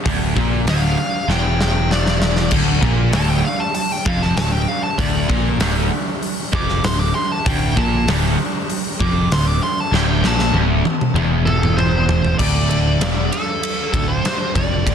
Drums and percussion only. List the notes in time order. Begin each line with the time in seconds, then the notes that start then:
0.06 kick, open hi-hat
0.37 kick
0.67 snare, open hi-hat
1.30 snare
1.61 snare
1.91 snare
2.06 snare
2.22 snare
2.36 snare
2.51 kick, crash
2.83 kick
3.13 snare, open hi-hat
3.75 open hi-hat
4.06 kick
4.22 snare
4.37 snare, open hi-hat
4.99 kick, open hi-hat
5.30 kick
5.60 snare, open hi-hat
6.22 open hi-hat
6.53 kick
6.69 snare
6.84 snare, open hi-hat
7.46 kick, open hi-hat
7.77 kick
8.08 snare, open hi-hat
8.70 open hi-hat
9.00 kick
9.32 snare, open hi-hat
9.94 snare
10.24 snare
10.39 snare
10.54 high tom
10.85 high tom
11.01 mid tom
11.16 mid tom
11.47 mid tom
11.63 mid tom
11.79 mid tom
12.09 floor tom
12.25 floor tom
12.39 kick, crash
12.71 ride
13.01 snare, ride
13.32 ride
13.63 ride
13.94 kick, ride
14.25 snare, ride
14.56 kick, ride
14.87 kick, ride